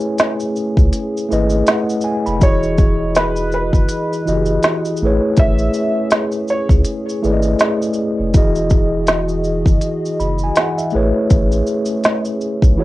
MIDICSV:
0, 0, Header, 1, 6, 480
1, 0, Start_track
1, 0, Tempo, 740741
1, 1566, Time_signature, 4, 2, 24, 8
1, 8322, End_track
2, 0, Start_track
2, 0, Title_t, "Felt piano"
2, 0, Program_c, 0, 0
2, 1574, Note_on_c, 0, 73, 91
2, 2050, Note_off_c, 0, 73, 0
2, 2052, Note_on_c, 0, 71, 81
2, 2265, Note_off_c, 0, 71, 0
2, 2294, Note_on_c, 0, 71, 76
2, 3464, Note_off_c, 0, 71, 0
2, 3496, Note_on_c, 0, 76, 97
2, 3945, Note_off_c, 0, 76, 0
2, 4213, Note_on_c, 0, 73, 77
2, 4334, Note_off_c, 0, 73, 0
2, 8322, End_track
3, 0, Start_track
3, 0, Title_t, "Tine electric piano"
3, 0, Program_c, 1, 4
3, 0, Control_c, 1, 64, 127
3, 0, Note_on_c, 1, 57, 90
3, 0, Note_on_c, 1, 64, 91
3, 0, Note_on_c, 1, 68, 84
3, 0, Note_on_c, 1, 71, 79
3, 0, Note_on_c, 1, 73, 98
3, 0, Note_on_c, 1, 80, 65
3, 173, Note_off_c, 1, 57, 0
3, 177, Note_off_c, 1, 64, 0
3, 180, Note_off_c, 1, 68, 0
3, 182, Note_off_c, 1, 71, 0
3, 186, Note_off_c, 1, 73, 0
3, 835, Note_on_c, 1, 57, 78
3, 844, Note_on_c, 1, 64, 70
3, 847, Note_on_c, 1, 68, 70
3, 855, Note_on_c, 1, 71, 73
3, 861, Note_on_c, 1, 75, 88
3, 1088, Note_on_c, 1, 78, 55
3, 1315, Note_off_c, 1, 78, 0
3, 1323, Note_off_c, 1, 80, 0
3, 1323, Note_on_c, 1, 80, 72
3, 1357, Note_off_c, 1, 57, 0
3, 1361, Note_off_c, 1, 64, 0
3, 1363, Note_off_c, 1, 68, 0
3, 1367, Note_off_c, 1, 71, 0
3, 1370, Note_off_c, 1, 75, 0
3, 1456, Note_off_c, 1, 80, 0
3, 1464, Note_on_c, 1, 83, 69
3, 1549, Note_on_c, 1, 52, 65
3, 1557, Note_on_c, 1, 64, 64
3, 1563, Note_on_c, 1, 66, 63
3, 1568, Note_on_c, 1, 68, 67
3, 1573, Note_on_c, 1, 75, 74
3, 1574, Control_c, 1, 64, 0
3, 1692, Note_off_c, 1, 83, 0
3, 1709, Control_c, 1, 64, 127
3, 2246, Note_off_c, 1, 52, 0
3, 2249, Note_off_c, 1, 64, 0
3, 2252, Note_off_c, 1, 66, 0
3, 2255, Note_off_c, 1, 68, 0
3, 2257, Note_off_c, 1, 75, 0
3, 2756, Note_on_c, 1, 52, 63
3, 2763, Note_on_c, 1, 64, 61
3, 2769, Note_on_c, 1, 66, 61
3, 2772, Note_on_c, 1, 67, 50
3, 2778, Note_on_c, 1, 75, 74
3, 2815, Note_on_c, 1, 68, 64
3, 2817, Note_off_c, 1, 67, 0
3, 3241, Note_off_c, 1, 52, 0
3, 3244, Note_off_c, 1, 64, 0
3, 3247, Note_off_c, 1, 66, 0
3, 3252, Note_off_c, 1, 75, 0
3, 3253, Control_c, 1, 64, 0
3, 3256, Note_on_c, 1, 57, 89
3, 3262, Note_off_c, 1, 68, 0
3, 3262, Note_on_c, 1, 64, 80
3, 3269, Note_on_c, 1, 68, 86
3, 3275, Note_on_c, 1, 71, 83
3, 3282, Note_on_c, 1, 73, 107
3, 3362, Control_c, 1, 64, 127
3, 4026, Note_off_c, 1, 57, 0
3, 4029, Note_off_c, 1, 64, 0
3, 4033, Note_off_c, 1, 68, 0
3, 4035, Note_off_c, 1, 71, 0
3, 4039, Note_off_c, 1, 73, 0
3, 4680, Note_on_c, 1, 57, 90
3, 4686, Note_on_c, 1, 64, 76
3, 4693, Note_on_c, 1, 68, 68
3, 4698, Note_on_c, 1, 71, 69
3, 4704, Note_on_c, 1, 74, 67
3, 4743, Note_off_c, 1, 74, 0
3, 4747, Note_on_c, 1, 75, 85
3, 5199, Note_off_c, 1, 57, 0
3, 5202, Note_off_c, 1, 64, 0
3, 5206, Note_off_c, 1, 68, 0
3, 5209, Note_off_c, 1, 71, 0
3, 5233, Note_off_c, 1, 75, 0
3, 5402, Note_on_c, 1, 52, 85
3, 5407, Note_on_c, 1, 64, 75
3, 5413, Note_on_c, 1, 66, 69
3, 5414, Control_c, 1, 64, 0
3, 5419, Note_on_c, 1, 68, 74
3, 5425, Note_on_c, 1, 75, 90
3, 5512, Control_c, 1, 64, 127
3, 6092, Note_off_c, 1, 52, 0
3, 6094, Note_off_c, 1, 64, 0
3, 6098, Note_off_c, 1, 66, 0
3, 6100, Note_off_c, 1, 68, 0
3, 6103, Note_off_c, 1, 75, 0
3, 6608, Note_on_c, 1, 83, 56
3, 6738, Note_off_c, 1, 83, 0
3, 6763, Note_on_c, 1, 80, 68
3, 6851, Note_off_c, 1, 80, 0
3, 6854, Note_on_c, 1, 78, 62
3, 6981, Note_off_c, 1, 78, 0
3, 6986, Note_on_c, 1, 76, 58
3, 7077, Note_on_c, 1, 57, 93
3, 7084, Note_on_c, 1, 64, 88
3, 7089, Note_on_c, 1, 68, 80
3, 7094, Control_c, 1, 64, 0
3, 7096, Note_on_c, 1, 71, 92
3, 7104, Note_on_c, 1, 73, 108
3, 7203, Control_c, 1, 64, 127
3, 7213, Note_off_c, 1, 76, 0
3, 7856, Note_off_c, 1, 57, 0
3, 7860, Note_off_c, 1, 64, 0
3, 7863, Note_off_c, 1, 68, 0
3, 7866, Note_off_c, 1, 71, 0
3, 7870, Note_off_c, 1, 73, 0
3, 8273, Note_on_c, 1, 52, 84
3, 8278, Note_on_c, 1, 64, 86
3, 8285, Note_on_c, 1, 66, 80
3, 8290, Note_on_c, 1, 68, 77
3, 8294, Control_c, 1, 64, 0
3, 8296, Note_on_c, 1, 73, 95
3, 8322, Note_off_c, 1, 52, 0
3, 8322, Note_off_c, 1, 64, 0
3, 8322, Note_off_c, 1, 66, 0
3, 8322, Note_off_c, 1, 68, 0
3, 8322, Note_off_c, 1, 73, 0
3, 8322, End_track
4, 0, Start_track
4, 0, Title_t, "Analog synth pad"
4, 0, Program_c, 2, 89
4, 0, Note_on_c, 2, 57, 70
4, 0, Note_on_c, 2, 61, 85
4, 0, Note_on_c, 2, 68, 76
4, 1544, Note_off_c, 2, 61, 0
4, 1545, Note_off_c, 2, 68, 0
4, 1546, Note_off_c, 2, 57, 0
4, 1560, Note_on_c, 2, 52, 74
4, 1563, Note_on_c, 2, 68, 81
4, 1563, Note_on_c, 2, 75, 67
4, 1564, Note_on_c, 2, 66, 65
4, 3226, Note_off_c, 2, 52, 0
4, 3228, Note_off_c, 2, 66, 0
4, 3228, Note_off_c, 2, 68, 0
4, 3228, Note_off_c, 2, 75, 0
4, 3245, Note_on_c, 2, 57, 69
4, 3248, Note_on_c, 2, 61, 83
4, 3250, Note_on_c, 2, 68, 75
4, 5384, Note_off_c, 2, 57, 0
4, 5385, Note_off_c, 2, 61, 0
4, 5386, Note_off_c, 2, 68, 0
4, 5411, Note_on_c, 2, 68, 88
4, 5412, Note_on_c, 2, 52, 72
4, 5412, Note_on_c, 2, 66, 69
4, 5414, Note_on_c, 2, 75, 63
4, 7071, Note_off_c, 2, 68, 0
4, 7072, Note_off_c, 2, 52, 0
4, 7072, Note_off_c, 2, 66, 0
4, 7073, Note_off_c, 2, 75, 0
4, 7093, Note_on_c, 2, 68, 81
4, 7094, Note_on_c, 2, 57, 75
4, 7094, Note_on_c, 2, 61, 83
4, 8277, Note_off_c, 2, 68, 0
4, 8278, Note_off_c, 2, 57, 0
4, 8285, Note_on_c, 2, 66, 70
4, 8286, Note_on_c, 2, 52, 74
4, 8288, Note_on_c, 2, 68, 80
4, 8322, Note_off_c, 2, 52, 0
4, 8322, Note_off_c, 2, 61, 0
4, 8322, Note_off_c, 2, 66, 0
4, 8322, Note_off_c, 2, 68, 0
4, 8322, End_track
5, 0, Start_track
5, 0, Title_t, "Analog synth bass"
5, 0, Program_c, 3, 38
5, 503, Note_on_c, 3, 37, 88
5, 589, Note_off_c, 3, 37, 0
5, 855, Note_on_c, 3, 32, 94
5, 1052, Note_off_c, 3, 32, 0
5, 1473, Note_on_c, 3, 29, 77
5, 1555, Note_off_c, 3, 29, 0
5, 1570, Note_on_c, 3, 28, 104
5, 2400, Note_off_c, 3, 28, 0
5, 2421, Note_on_c, 3, 30, 82
5, 2508, Note_off_c, 3, 30, 0
5, 2772, Note_on_c, 3, 30, 90
5, 2971, Note_off_c, 3, 30, 0
5, 3255, Note_on_c, 3, 33, 95
5, 3367, Note_off_c, 3, 33, 0
5, 3488, Note_on_c, 3, 33, 111
5, 3688, Note_off_c, 3, 33, 0
5, 4341, Note_on_c, 3, 37, 89
5, 4428, Note_off_c, 3, 37, 0
5, 4694, Note_on_c, 3, 32, 91
5, 4892, Note_off_c, 3, 32, 0
5, 5310, Note_on_c, 3, 29, 79
5, 5393, Note_off_c, 3, 29, 0
5, 5409, Note_on_c, 3, 28, 117
5, 6240, Note_off_c, 3, 28, 0
5, 6262, Note_on_c, 3, 30, 88
5, 6348, Note_off_c, 3, 30, 0
5, 6611, Note_on_c, 3, 30, 100
5, 6810, Note_off_c, 3, 30, 0
5, 7093, Note_on_c, 3, 33, 104
5, 7206, Note_off_c, 3, 33, 0
5, 7331, Note_on_c, 3, 33, 108
5, 7530, Note_off_c, 3, 33, 0
5, 8183, Note_on_c, 3, 35, 87
5, 8269, Note_off_c, 3, 35, 0
5, 8322, End_track
6, 0, Start_track
6, 0, Title_t, "Drums"
6, 0, Note_on_c, 9, 82, 48
6, 65, Note_off_c, 9, 82, 0
6, 119, Note_on_c, 9, 42, 61
6, 119, Note_on_c, 9, 82, 66
6, 127, Note_on_c, 9, 38, 117
6, 184, Note_off_c, 9, 42, 0
6, 184, Note_off_c, 9, 82, 0
6, 192, Note_off_c, 9, 38, 0
6, 258, Note_on_c, 9, 82, 44
6, 323, Note_off_c, 9, 82, 0
6, 361, Note_on_c, 9, 82, 39
6, 426, Note_off_c, 9, 82, 0
6, 498, Note_on_c, 9, 36, 79
6, 506, Note_on_c, 9, 82, 45
6, 563, Note_off_c, 9, 36, 0
6, 571, Note_off_c, 9, 82, 0
6, 601, Note_on_c, 9, 42, 69
6, 601, Note_on_c, 9, 82, 68
6, 666, Note_off_c, 9, 42, 0
6, 666, Note_off_c, 9, 82, 0
6, 759, Note_on_c, 9, 82, 40
6, 824, Note_off_c, 9, 82, 0
6, 853, Note_on_c, 9, 82, 47
6, 918, Note_off_c, 9, 82, 0
6, 970, Note_on_c, 9, 82, 48
6, 1035, Note_off_c, 9, 82, 0
6, 1080, Note_on_c, 9, 42, 65
6, 1080, Note_on_c, 9, 82, 62
6, 1089, Note_on_c, 9, 38, 102
6, 1145, Note_off_c, 9, 42, 0
6, 1145, Note_off_c, 9, 82, 0
6, 1154, Note_off_c, 9, 38, 0
6, 1228, Note_on_c, 9, 82, 48
6, 1293, Note_off_c, 9, 82, 0
6, 1303, Note_on_c, 9, 82, 49
6, 1367, Note_off_c, 9, 82, 0
6, 1467, Note_on_c, 9, 82, 42
6, 1532, Note_off_c, 9, 82, 0
6, 1563, Note_on_c, 9, 42, 61
6, 1563, Note_on_c, 9, 82, 61
6, 1566, Note_on_c, 9, 36, 111
6, 1628, Note_off_c, 9, 42, 0
6, 1628, Note_off_c, 9, 82, 0
6, 1630, Note_off_c, 9, 36, 0
6, 1704, Note_on_c, 9, 82, 39
6, 1769, Note_off_c, 9, 82, 0
6, 1800, Note_on_c, 9, 82, 51
6, 1803, Note_on_c, 9, 36, 91
6, 1865, Note_off_c, 9, 82, 0
6, 1868, Note_off_c, 9, 36, 0
6, 2042, Note_on_c, 9, 42, 66
6, 2042, Note_on_c, 9, 82, 68
6, 2051, Note_on_c, 9, 38, 118
6, 2107, Note_off_c, 9, 42, 0
6, 2107, Note_off_c, 9, 82, 0
6, 2116, Note_off_c, 9, 38, 0
6, 2179, Note_on_c, 9, 82, 46
6, 2243, Note_off_c, 9, 82, 0
6, 2280, Note_on_c, 9, 82, 37
6, 2345, Note_off_c, 9, 82, 0
6, 2418, Note_on_c, 9, 36, 82
6, 2426, Note_on_c, 9, 82, 44
6, 2482, Note_off_c, 9, 36, 0
6, 2491, Note_off_c, 9, 82, 0
6, 2519, Note_on_c, 9, 42, 67
6, 2519, Note_on_c, 9, 82, 69
6, 2584, Note_off_c, 9, 42, 0
6, 2584, Note_off_c, 9, 82, 0
6, 2677, Note_on_c, 9, 82, 45
6, 2742, Note_off_c, 9, 82, 0
6, 2771, Note_on_c, 9, 82, 46
6, 2835, Note_off_c, 9, 82, 0
6, 2889, Note_on_c, 9, 82, 46
6, 2953, Note_off_c, 9, 82, 0
6, 2999, Note_on_c, 9, 42, 62
6, 2999, Note_on_c, 9, 82, 66
6, 3008, Note_on_c, 9, 38, 101
6, 3064, Note_off_c, 9, 42, 0
6, 3064, Note_off_c, 9, 82, 0
6, 3073, Note_off_c, 9, 38, 0
6, 3144, Note_on_c, 9, 82, 45
6, 3209, Note_off_c, 9, 82, 0
6, 3219, Note_on_c, 9, 82, 48
6, 3284, Note_off_c, 9, 82, 0
6, 3478, Note_on_c, 9, 42, 63
6, 3478, Note_on_c, 9, 82, 62
6, 3484, Note_on_c, 9, 36, 109
6, 3543, Note_off_c, 9, 42, 0
6, 3543, Note_off_c, 9, 82, 0
6, 3549, Note_off_c, 9, 36, 0
6, 3621, Note_on_c, 9, 82, 41
6, 3685, Note_off_c, 9, 82, 0
6, 3718, Note_on_c, 9, 82, 51
6, 3782, Note_off_c, 9, 82, 0
6, 3957, Note_on_c, 9, 42, 67
6, 3957, Note_on_c, 9, 82, 64
6, 3966, Note_on_c, 9, 38, 121
6, 4022, Note_off_c, 9, 42, 0
6, 4022, Note_off_c, 9, 82, 0
6, 4030, Note_off_c, 9, 38, 0
6, 4094, Note_on_c, 9, 82, 44
6, 4158, Note_off_c, 9, 82, 0
6, 4198, Note_on_c, 9, 82, 38
6, 4263, Note_off_c, 9, 82, 0
6, 4337, Note_on_c, 9, 36, 85
6, 4345, Note_on_c, 9, 82, 45
6, 4402, Note_off_c, 9, 36, 0
6, 4409, Note_off_c, 9, 82, 0
6, 4436, Note_on_c, 9, 42, 70
6, 4436, Note_on_c, 9, 82, 70
6, 4501, Note_off_c, 9, 42, 0
6, 4501, Note_off_c, 9, 82, 0
6, 4596, Note_on_c, 9, 82, 45
6, 4661, Note_off_c, 9, 82, 0
6, 4691, Note_on_c, 9, 82, 46
6, 4756, Note_off_c, 9, 82, 0
6, 4811, Note_on_c, 9, 82, 46
6, 4876, Note_off_c, 9, 82, 0
6, 4921, Note_on_c, 9, 42, 63
6, 4921, Note_on_c, 9, 82, 64
6, 4930, Note_on_c, 9, 38, 98
6, 4986, Note_off_c, 9, 42, 0
6, 4986, Note_off_c, 9, 82, 0
6, 4994, Note_off_c, 9, 38, 0
6, 5068, Note_on_c, 9, 82, 46
6, 5133, Note_off_c, 9, 82, 0
6, 5142, Note_on_c, 9, 82, 48
6, 5207, Note_off_c, 9, 82, 0
6, 5403, Note_on_c, 9, 42, 62
6, 5403, Note_on_c, 9, 82, 62
6, 5406, Note_on_c, 9, 36, 114
6, 5468, Note_off_c, 9, 42, 0
6, 5468, Note_off_c, 9, 82, 0
6, 5470, Note_off_c, 9, 36, 0
6, 5543, Note_on_c, 9, 82, 38
6, 5607, Note_off_c, 9, 82, 0
6, 5636, Note_on_c, 9, 82, 51
6, 5642, Note_on_c, 9, 36, 93
6, 5701, Note_off_c, 9, 82, 0
6, 5707, Note_off_c, 9, 36, 0
6, 5877, Note_on_c, 9, 42, 64
6, 5877, Note_on_c, 9, 82, 67
6, 5885, Note_on_c, 9, 38, 119
6, 5942, Note_off_c, 9, 42, 0
6, 5942, Note_off_c, 9, 82, 0
6, 5950, Note_off_c, 9, 38, 0
6, 6017, Note_on_c, 9, 82, 47
6, 6082, Note_off_c, 9, 82, 0
6, 6117, Note_on_c, 9, 82, 37
6, 6182, Note_off_c, 9, 82, 0
6, 6258, Note_on_c, 9, 36, 80
6, 6265, Note_on_c, 9, 82, 42
6, 6323, Note_off_c, 9, 36, 0
6, 6330, Note_off_c, 9, 82, 0
6, 6359, Note_on_c, 9, 42, 67
6, 6359, Note_on_c, 9, 82, 67
6, 6424, Note_off_c, 9, 42, 0
6, 6424, Note_off_c, 9, 82, 0
6, 6516, Note_on_c, 9, 82, 43
6, 6581, Note_off_c, 9, 82, 0
6, 6611, Note_on_c, 9, 82, 47
6, 6676, Note_off_c, 9, 82, 0
6, 6729, Note_on_c, 9, 82, 48
6, 6794, Note_off_c, 9, 82, 0
6, 6841, Note_on_c, 9, 42, 65
6, 6841, Note_on_c, 9, 82, 63
6, 6849, Note_on_c, 9, 38, 103
6, 6905, Note_off_c, 9, 42, 0
6, 6905, Note_off_c, 9, 82, 0
6, 6914, Note_off_c, 9, 38, 0
6, 6988, Note_on_c, 9, 82, 50
6, 7052, Note_off_c, 9, 82, 0
6, 7065, Note_on_c, 9, 82, 45
6, 7129, Note_off_c, 9, 82, 0
6, 7324, Note_on_c, 9, 42, 61
6, 7324, Note_on_c, 9, 82, 64
6, 7326, Note_on_c, 9, 36, 114
6, 7389, Note_off_c, 9, 42, 0
6, 7389, Note_off_c, 9, 82, 0
6, 7391, Note_off_c, 9, 36, 0
6, 7464, Note_on_c, 9, 82, 40
6, 7529, Note_off_c, 9, 82, 0
6, 7560, Note_on_c, 9, 82, 52
6, 7625, Note_off_c, 9, 82, 0
6, 7682, Note_on_c, 9, 82, 51
6, 7747, Note_off_c, 9, 82, 0
6, 7801, Note_on_c, 9, 42, 61
6, 7801, Note_on_c, 9, 82, 67
6, 7809, Note_on_c, 9, 38, 119
6, 7866, Note_off_c, 9, 42, 0
6, 7866, Note_off_c, 9, 82, 0
6, 7874, Note_off_c, 9, 38, 0
6, 7938, Note_on_c, 9, 82, 46
6, 8003, Note_off_c, 9, 82, 0
6, 8043, Note_on_c, 9, 82, 36
6, 8108, Note_off_c, 9, 82, 0
6, 8180, Note_on_c, 9, 36, 82
6, 8187, Note_on_c, 9, 82, 44
6, 8244, Note_off_c, 9, 36, 0
6, 8252, Note_off_c, 9, 82, 0
6, 8322, End_track
0, 0, End_of_file